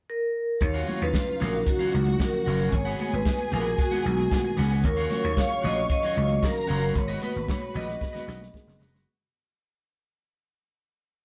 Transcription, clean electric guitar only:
0.61 muted clean electric guitar stroke soft
0.74 0.86 F#4 medium
0.74 0.87 C#5 medium
0.74 0.88 F5 medium
0.87 1.01 F#4 medium
0.87 1.01 C#5 medium
0.87 1.00 F5 medium
1.01 muted clean electric guitar stroke soft
1.27 muted clean electric guitar stroke soft
1.40 1.57 F#4 medium
1.40 1.53 C#5 medium
1.40 1.52 F5 medium
1.54 muted clean electric guitar stroke soft
1.67 muted clean electric guitar stroke soft
1.79 1.93 F#4 medium
1.79 1.93 C#5 medium
1.79 1.94 F5 medium
1.94 muted clean electric guitar stroke soft
2.07 muted clean electric guitar stroke soft
2.20 muted clean electric guitar stroke soft
2.34 muted clean electric guitar stroke soft
2.46 2.60 F#4 medium
2.46 2.59 C#5 medium
2.46 2.58 F5 medium
2.59 2.72 F#4 medium
2.59 2.72 C#5 medium
2.59 2.73 F5 medium
2.72 muted clean electric guitar stroke soft
2.85 2.98 G#4 medium
2.85 2.99 B4 medium
2.85 2.99 F#5 medium
2.99 3.12 G#4 medium
2.99 3.12 B4 medium
2.99 3.11 F#5 medium
3.12 muted clean electric guitar stroke medium
3.39 muted clean electric guitar stroke medium
3.52 3.72 G#4 medium
3.52 3.65 B4 medium
3.52 3.64 F#5 medium
3.65 muted clean electric guitar stroke soft
3.79 muted clean electric guitar stroke soft
3.91 4.03 G#4 medium
3.91 4.04 B4 medium
3.91 4.05 F#5 medium
4.04 muted clean electric guitar stroke soft
4.19 muted clean electric guitar stroke soft
4.31 muted clean electric guitar stroke soft
4.44 muted clean electric guitar stroke soft
4.57 4.71 G#4 medium
4.57 4.70 B4 medium
4.57 4.70 F#5 medium
4.71 4.84 G#4 soft
4.71 4.84 B4 soft
4.71 4.84 F#5 medium
4.84 muted clean electric guitar stroke soft
4.97 5.10 F#4 medium
4.97 5.11 C#5 medium
4.97 5.12 F5 loud
5.11 5.24 F#4 medium
5.11 5.24 C#5 medium
5.11 5.23 F5 medium
5.24 muted clean electric guitar stroke soft
5.50 muted clean electric guitar stroke soft
5.62 5.80 F#4 medium
5.62 5.77 C#5 medium
5.62 5.76 F5 medium
5.77 muted clean electric guitar stroke soft
5.90 muted clean electric guitar stroke soft
6.03 6.16 F#4 medium
6.03 6.16 C#5 medium
6.03 6.17 F5 medium
6.17 muted clean electric guitar stroke soft
6.29 muted clean electric guitar stroke soft
6.42 muted clean electric guitar stroke soft
6.55 muted clean electric guitar stroke soft
6.67 6.81 F#4 medium
6.67 6.81 C#5 medium
6.67 6.80 F5 medium
6.81 6.93 F#4 soft
6.81 6.94 C#5 soft
6.81 6.95 F5 medium
6.95 muted clean electric guitar stroke soft
7.08 7.20 F#4 medium
7.08 7.21 B4 medium
7.08 7.22 D#5 medium
7.22 7.35 F#4 medium
7.22 7.35 B4 medium
7.22 7.34 D#5 medium
7.35 muted clean electric guitar stroke soft
7.62 muted clean electric guitar stroke medium
7.74 7.91 F#4 medium
7.74 7.87 B4 medium
7.74 7.86 D#5 medium
7.87 muted clean electric guitar stroke soft
8.00 muted clean electric guitar stroke soft
8.13 8.25 F#4 medium
8.13 8.26 B4 medium
8.13 8.27 D#5 medium
8.26 8.40 F#4 medium
8.26 8.41 B4 medium
8.26 8.40 D#5 medium
8.41 muted clean electric guitar stroke soft
8.53 muted clean electric guitar stroke soft
8.67 muted clean electric guitar stroke soft
8.79 8.93 F#4 medium
8.79 8.93 B4 medium
8.79 8.91 D#5 medium
8.92 9.07 F#4 medium
8.92 9.07 B4 medium
8.92 9.06 D#5 medium

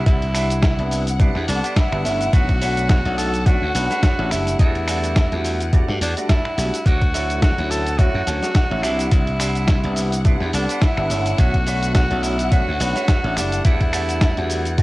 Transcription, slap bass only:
0.07 0.73 C2 medium
0.79 1.30 C2 loud
1.36 1.45 E2 loud
1.48 1.61 C2 loud
1.92 2.02 G1 loud
2.05 2.27 G1 medium
2.33 3.00 B1 loud
3.05 3.56 B1 loud
3.62 3.72 D2 loud
3.75 3.87 B1 loud
4.19 4.33 A1 loud
4.31 4.54 F#1 medium
4.59 5.26 E2 loud
5.32 5.83 E2 loud
5.89 5.98 G2 loud
6.01 6.13 E2 loud
6.58 6.70 B1 medium
6.86 7.53 D2 medium
7.58 8.09 D2 medium
8.15 8.24 F#2 medium
8.27 8.40 D2 loud
8.71 8.84 A1 loud
8.84 9.07 C2 medium
9.12 9.79 C2 loud
9.84 10.35 C2 loud
10.41 10.51 E2 medium
10.53 10.66 C2 loud
10.97 11.07 G1 loud
11.10 11.33 G1 medium
11.39 12.05 B1 medium
12.11 12.62 B1 loud
12.68 12.78 D2 medium
12.80 12.93 B1 loud
13.24 13.39 A1 loud
13.37 13.60 F#1 medium
13.65 14.32 E2 loud
14.38 14.82 E2 loud

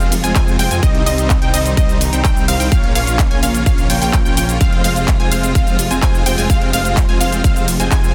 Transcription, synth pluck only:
0.24 0.33 G#5 medium
0.36 0.56 G#5 loud
0.59 0.69 G5 loud
0.71 0.81 G#5 medium
0.83 1.04 D#5 loud
1.06 1.39 D#5 loud
1.42 1.51 G5 medium
1.54 1.74 D#5 loud
1.77 1.98 D#5 loud
2.13 2.22 G5 medium
2.24 2.45 G5 loud
2.48 2.58 F5 loud
2.60 2.70 G5 medium
2.72 2.93 F5 loud
2.95 3.28 F5 loud
3.31 3.40 G#5 medium
3.43 3.63 F5 loud
3.66 3.87 F5 medium
3.90 3.99 G5 medium
4.02 4.12 G5 loud
4.13 4.22 G5 medium
4.25 4.35 G5 medium
4.37 4.58 G5 loud
4.61 4.82 F5 loud
4.84 5.17 F5 loud
5.20 5.29 G#5 medium
5.32 5.52 F5 loud
5.55 5.76 F5 loud
5.91 6.00 G#5 medium
6.02 6.23 G#5 loud
6.26 6.36 G5 loud
6.38 6.48 G#5 loud
6.50 6.71 F5 loud
6.73 7.06 F5 loud
7.09 7.18 G#5 medium
7.21 7.41 F5 loud
7.44 7.65 F5 medium
7.80 7.89 G#5 medium
7.92 8.12 G#5 loud

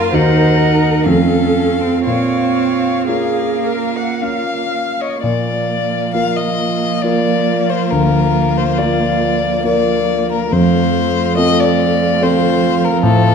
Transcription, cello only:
0.00 0.15 F4 medium
0.13 1.07 D#4 medium
1.05 1.82 C#4 medium
1.81 2.03 C4 soft
2.04 3.09 C4 medium
3.07 4.74 A#3 soft
5.22 10.47 F3 soft
10.52 13.35 F3 soft

